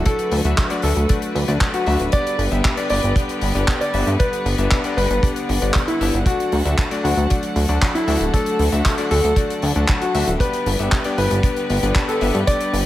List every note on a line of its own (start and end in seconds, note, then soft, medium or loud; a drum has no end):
0.00 10.36 D3 medium
0.00 2.09 F#3 medium
0.00 2.09 A3 medium
0.00 2.09 F#4 medium
0.06 0.42 A3 medium
0.06 0.42 D4 medium
0.06 0.42 F#4 medium
0.06 0.34 A4 loud
0.06 6.23 B4 medium
0.06 0.42 D5 medium
0.06 kick loud
0.06 closed hi-hat medium
0.19 closed hi-hat medium
0.32 0.41 D2 medium
0.32 open hi-hat loud
0.45 0.54 D2 medium
0.45 0.67 A3 medium
0.45 0.67 D4 medium
0.45 0.67 F#4 medium
0.45 0.67 E5 medium
0.45 closed hi-hat medium
0.58 kick loud
0.58 clap loud
0.58 closed hi-hat medium
0.70 1.06 A3 medium
0.70 1.06 D4 medium
0.70 1.06 F#4 medium
0.70 1.06 D5 medium
0.70 closed hi-hat medium
0.82 0.93 D2 medium
0.82 1.11 A4 medium
0.82 open hi-hat loud
0.96 1.06 D2 medium
0.96 closed hi-hat soft
1.09 1.45 A3 medium
1.09 1.45 D4 medium
1.09 1.45 F#4 medium
1.09 1.45 D5 medium
1.09 kick loud
1.09 closed hi-hat loud
1.22 closed hi-hat medium
1.35 1.45 D2 medium
1.35 open hi-hat loud
1.48 1.58 D2 medium
1.48 1.84 A3 medium
1.48 1.84 D4 medium
1.48 1.84 F#4 medium
1.48 1.84 D5 medium
1.48 closed hi-hat medium
1.61 kick loud
1.61 clap loud
1.61 closed hi-hat medium
1.74 2.02 F#4 medium
1.74 closed hi-hat medium
1.86 1.97 D2 medium
1.86 2.10 A3 medium
1.86 2.10 D4 medium
1.86 2.10 F#4 medium
1.86 2.10 E5 medium
1.86 open hi-hat loud
2.00 2.10 D1 medium
2.00 closed hi-hat medium
2.12 6.23 G3 medium
2.12 2.48 B3 medium
2.12 6.23 B3 medium
2.12 2.48 D4 medium
2.12 2.48 G4 medium
2.12 4.18 G4 medium
2.12 2.48 D5 medium
2.12 2.41 D5 loud
2.12 kick loud
2.12 closed hi-hat loud
2.27 closed hi-hat medium
2.39 2.48 G1 medium
2.39 open hi-hat medium
2.51 2.61 G1 medium
2.51 2.74 B3 medium
2.51 2.74 D4 medium
2.51 2.74 G4 medium
2.51 2.74 E5 medium
2.51 closed hi-hat soft
2.64 kick loud
2.64 clap loud
2.64 closed hi-hat medium
2.77 3.13 B3 medium
2.77 3.13 D4 medium
2.77 3.13 G4 medium
2.77 3.13 D5 medium
2.77 closed hi-hat medium
2.90 3.00 G1 medium
2.90 3.18 D5 medium
2.90 open hi-hat loud
3.03 3.13 G1 medium
3.03 closed hi-hat medium
3.16 3.52 B3 medium
3.16 3.52 D4 medium
3.16 3.52 G4 medium
3.16 3.52 D5 medium
3.16 kick loud
3.16 closed hi-hat medium
3.29 closed hi-hat medium
3.41 3.52 G1 medium
3.41 open hi-hat loud
3.55 3.65 G1 medium
3.55 3.91 B3 medium
3.55 3.91 D4 medium
3.55 3.91 G4 medium
3.55 3.91 D5 medium
3.55 closed hi-hat medium
3.68 kick loud
3.68 clap loud
3.68 closed hi-hat medium
3.81 4.09 D5 medium
3.81 closed hi-hat medium
3.94 4.04 G1 medium
3.94 4.17 B3 medium
3.94 4.17 D4 medium
3.94 4.17 G4 medium
3.94 4.17 E5 medium
3.94 open hi-hat loud
4.07 4.16 G2 medium
4.07 closed hi-hat medium
4.19 4.55 B3 medium
4.19 4.55 D4 medium
4.19 4.55 G4 medium
4.19 4.47 B4 loud
4.19 4.55 D5 medium
4.19 10.36 F#5 medium
4.19 kick loud
4.19 closed hi-hat medium
4.33 closed hi-hat medium
4.46 4.55 G1 loud
4.46 open hi-hat loud
4.58 4.68 G1 medium
4.58 4.81 B3 medium
4.58 4.81 D4 medium
4.58 4.81 G4 medium
4.58 4.81 E5 medium
4.58 closed hi-hat medium
4.71 kick loud
4.71 clap loud
4.71 closed hi-hat medium
4.84 5.20 B3 medium
4.84 5.20 D4 medium
4.84 5.20 G4 medium
4.84 5.20 D5 loud
4.84 closed hi-hat medium
4.97 5.07 G1 medium
4.97 5.25 B4 medium
4.97 open hi-hat loud
5.10 5.20 G1 medium
5.10 closed hi-hat medium
5.23 5.59 B3 medium
5.23 5.59 D4 medium
5.23 5.59 G4 medium
5.23 5.59 D5 medium
5.23 kick loud
5.23 closed hi-hat medium
5.36 closed hi-hat medium
5.49 5.59 G1 medium
5.49 kick medium
5.49 open hi-hat loud
5.62 5.72 G1 medium
5.62 5.98 B3 medium
5.62 5.98 D4 medium
5.62 5.98 G4 medium
5.62 5.98 D5 medium
5.62 closed hi-hat medium
5.74 kick loud
5.74 clap loud
5.74 closed hi-hat medium
5.88 6.16 E4 medium
5.88 closed hi-hat medium
6.01 6.10 G1 medium
6.01 6.23 B3 medium
6.01 6.23 D4 medium
6.01 6.23 G4 medium
6.01 6.24 E5 medium
6.01 open hi-hat loud
6.14 6.23 G1 medium
6.14 closed hi-hat medium
6.26 10.36 F#3 medium
6.26 6.62 A3 medium
6.26 10.36 A3 medium
6.26 6.62 D4 medium
6.26 6.54 F#4 loud
6.26 6.62 F#4 medium
6.26 10.36 A4 medium
6.26 6.62 D5 medium
6.26 kick loud
6.26 closed hi-hat loud
6.40 closed hi-hat medium
6.52 6.62 D2 medium
6.52 open hi-hat loud
6.65 6.75 D2 medium
6.65 6.88 A3 medium
6.65 6.88 D4 medium
6.65 6.88 F#4 medium
6.65 6.88 E5 medium
6.65 closed hi-hat medium
6.78 kick loud
6.78 clap loud
6.78 closed hi-hat loud
6.91 7.27 A3 medium
6.91 7.27 D4 medium
6.91 7.27 F#4 medium
6.91 7.27 D5 medium
6.91 closed hi-hat medium
7.04 7.14 D2 medium
7.04 7.32 F#4 medium
7.04 open hi-hat loud
7.17 7.27 D2 medium
7.17 closed hi-hat soft
7.30 7.66 A3 medium
7.30 7.66 D4 medium
7.30 7.66 F#4 medium
7.30 7.66 D5 medium
7.30 kick loud
7.30 closed hi-hat medium
7.43 closed hi-hat medium
7.56 7.66 D2 medium
7.56 open hi-hat loud
7.68 7.79 D2 medium
7.68 8.05 A3 medium
7.68 8.05 D4 medium
7.68 8.05 F#4 medium
7.68 8.05 D5 medium
7.68 closed hi-hat medium
7.82 kick loud
7.82 clap loud
7.82 closed hi-hat medium
7.95 8.23 E4 medium
7.95 closed hi-hat medium
8.08 8.17 D2 medium
8.08 8.30 A3 medium
8.08 8.30 D4 medium
8.08 8.30 F#4 medium
8.08 8.30 E5 medium
8.08 open hi-hat loud
8.21 8.30 D1 medium
8.21 closed hi-hat medium
8.34 8.69 A3 medium
8.34 8.69 D4 medium
8.34 8.69 F#4 medium
8.34 8.61 A4 loud
8.34 8.69 D5 medium
8.34 kick loud
8.34 closed hi-hat loud
8.46 closed hi-hat medium
8.59 8.69 D2 medium
8.59 open hi-hat loud
8.72 8.82 D2 medium
8.72 8.95 A3 medium
8.72 8.95 D4 medium
8.72 8.95 F#4 medium
8.72 8.95 E5 medium
8.72 closed hi-hat soft
8.85 kick loud
8.85 clap loud
8.85 closed hi-hat loud
8.98 9.34 A3 medium
8.98 9.34 D4 medium
8.98 9.34 F#4 medium
8.98 9.34 D5 medium
8.98 closed hi-hat medium
9.11 9.21 D2 medium
9.11 9.39 A4 medium
9.11 open hi-hat loud
9.24 9.34 D2 medium
9.24 closed hi-hat medium
9.36 9.73 A3 medium
9.36 9.73 D4 medium
9.36 9.73 F#4 medium
9.36 9.73 D5 medium
9.36 kick loud
9.36 closed hi-hat medium
9.50 closed hi-hat medium
9.62 9.73 D2 loud
9.62 open hi-hat loud
9.75 9.85 D2 medium
9.75 10.11 A3 medium
9.75 10.12 D4 medium
9.75 10.11 F#4 medium
9.75 10.11 D5 medium
9.75 closed hi-hat medium
9.88 kick loud
9.88 clap loud
9.88 closed hi-hat medium
10.01 10.29 F#4 medium
10.01 closed hi-hat medium
10.14 10.24 D2 medium
10.14 10.37 A3 medium
10.14 10.37 D4 medium
10.14 10.37 F#4 medium
10.14 10.37 E5 medium
10.14 open hi-hat loud
10.27 10.37 D1 medium
10.27 closed hi-hat medium
10.40 12.86 D3 medium
10.40 12.86 G3 medium
10.40 10.76 B3 medium
10.40 12.86 B3 medium
10.40 10.76 D4 medium
10.40 10.76 G4 medium
10.40 12.86 G4 medium
10.40 10.68 B4 loud
10.40 12.86 B4 medium
10.40 10.76 D5 medium
10.40 kick loud
10.40 closed hi-hat loud
10.53 closed hi-hat medium
10.66 10.76 G1 medium
10.66 open hi-hat loud
10.79 10.89 G1 medium
10.79 11.02 B3 medium
10.79 11.02 D4 medium
10.79 11.02 G4 medium
10.79 11.02 E5 medium
10.79 closed hi-hat soft
10.92 kick loud
10.92 clap loud
10.92 closed hi-hat medium
11.04 11.41 B3 medium
11.04 11.41 D4 medium
11.04 11.41 G4 medium
11.04 11.41 D5 medium
11.04 closed hi-hat medium
11.18 11.28 G1 medium
11.18 11.46 B4 medium
11.18 open hi-hat loud
11.31 11.41 G1 medium
11.31 closed hi-hat medium
11.43 11.80 B3 medium
11.43 11.80 D4 medium
11.43 11.80 G4 medium
11.43 11.80 D5 medium
11.43 kick loud
11.43 closed hi-hat loud
11.56 closed hi-hat soft
11.70 11.79 G1 medium
11.70 open hi-hat loud
11.83 11.92 G1 medium
11.83 12.18 B3 medium
11.83 12.18 D4 medium
11.83 12.18 G4 medium
11.83 12.18 D5 medium
11.83 closed hi-hat medium
11.95 kick loud
11.95 clap loud
11.95 closed hi-hat loud
12.08 12.36 A4 medium
12.08 closed hi-hat medium
12.21 12.31 G1 medium
12.21 12.44 B3 medium
12.21 12.44 D4 medium
12.21 12.44 G4 medium
12.21 12.44 E5 medium
12.21 open hi-hat loud
12.35 12.44 G2 medium
12.35 closed hi-hat medium
12.47 12.83 B3 medium
12.47 12.83 D4 medium
12.47 12.83 G4 medium
12.47 12.75 D5 loud
12.47 12.83 D5 medium
12.47 kick loud
12.47 closed hi-hat loud
12.60 closed hi-hat medium
12.73 12.83 G1 medium
12.73 open hi-hat loud